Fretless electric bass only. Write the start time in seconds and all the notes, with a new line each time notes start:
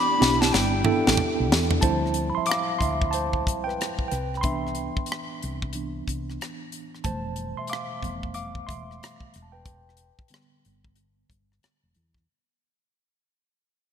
0.21 B1
0.54 G1
0.87 muted fretless electric bass stroke
1.08 A1
1.19 muted fretless electric bass stroke
1.40 B1
1.52 E2
1.83 D2
2.38 muted fretless electric bass stroke
2.82 D2
3.48 C2
4.12 C2
4.98 muted fretless electric bass stroke
5.44 C2
6.09 C2
7.06 F1
7.59 muted fretless electric bass stroke
8.03 F1
8.70 E1
9.36 E1
10.20 muted fretless electric bass stroke
10.66 G1
11.31 G1
11.65 muted fretless electric bass stroke
11.83 E1
11.96 E2